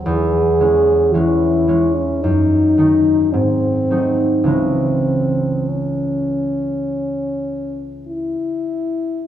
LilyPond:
<<
  \new Staff \with { instrumentName = "French horn" } { \time 4/4 \key cis \minor \tempo 4 = 51 gis'4 e'8. cis'16 dis'4 bis4 | bis4 cis'2 e'4 | }
  \new Staff \with { instrumentName = "Harp" } { \clef bass \time 4/4 \key cis \minor e,8 <e gis cis'>8 <e gis cis'>8 <e gis cis'>8 fis,8 <dis a dis'>8 gis,8 <fis a dis'>8 | <cis, e gis cis'>1 | }
>>